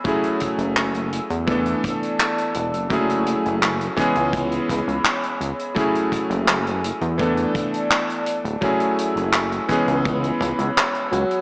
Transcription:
<<
  \new Staff \with { instrumentName = "Ambient pad" } { \time 4/4 \key fis \minor \tempo 4 = 84 << { e'''1~ | e'''1~ | e'''1 | e'''1 | } \\ { <a gis''>2 <d'' a''>2 | <a gis''>4. <cis'' b''>2~ <cis'' b''>8 | <a gis''>2 <d'' a''>2 | <a gis''>4. <cis'' b''>2~ <cis'' b''>8 | } >> }
  \new Staff \with { instrumentName = "Electric grand piano" } { \time 4/4 \key fis \minor <fis a cis' e' gis'>2 <e a b d' a'>2 | <fis a cis' e' gis'>4. <e gis b cis' gis'>2~ <e gis b cis' gis'>8 | <fis a cis' e' gis'>2 <e a b d' a'>2 | <fis a cis' e' gis'>4. <e gis b cis' gis'>2~ <e gis b cis' gis'>8 | }
  \new Staff \with { instrumentName = "Tenor saxophone" } { \clef bass \time 4/4 \key fis \minor r1 | r1 | r1 | r2. r8 fis8 | }
  \new Staff \with { instrumentName = "Analog synth bass" } { \clef bass \time 4/4 \key fis \minor r8. fis,,8. r16 e,8 r4 r16 e,,16 fis,,16~ | fis,,8 r16 fis,,8 r8 cis,8 r16 cis,16 cis,16 r8 cis,16 r16 | r8. fis,,8. r16 e,8 r4. d,,16 | r8. fis,,8 r8 cis,8 r16 cis,16 cis,16 r8 cis,16 r16 | }
  \new DrumStaff \with { instrumentName = "Drums" } \drummode { \time 4/4 <hh bd>16 hh16 <hh bd>16 hh16 <hc hh>16 hh16 hh16 hh16 <hh bd>16 hh16 <hh bd>16 hh16 <hc hh>16 hh16 hh16 hh16 | <hh bd>16 hh16 hh16 hh16 <hc hh>16 hh16 <hh bd>16 hh16 <hh bd>16 hh16 <hh bd>16 hh16 <hc hh>16 hh16 hh16 hh16 | <hh bd>16 hh16 <hh bd>16 hh16 <hc hh>16 hh16 hh16 hh16 <hh bd>16 hh16 <hh bd>16 hh16 <hc hh>16 hh16 hh16 hh16 | <hh bd>16 hh16 hh16 hh16 <hc hh>16 hh16 <hh bd>16 hh16 <hh bd>16 hh16 <hh bd>16 hh16 <hc hh>16 hh16 hh16 hh16 | }
>>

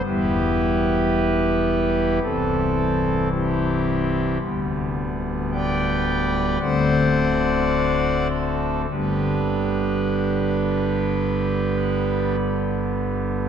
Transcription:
<<
  \new Staff \with { instrumentName = "Pipe organ" } { \time 4/4 \key g \major \tempo 4 = 54 <e' g' b'>2 a'4 <c' e' g'>4 | r4 <b' d'' g''>4 <c'' d'' fis''>4. a'8 | <d' g' b'>2. r4 | }
  \new Staff \with { instrumentName = "Pipe organ" } { \clef bass \time 4/4 \key g \major <e,, e, e g b>2 <c,, c, e g c'>2 | <d,, d, d g b>2 <d,, d, d a c'>2 | <g,, g, d g b>1 | }
>>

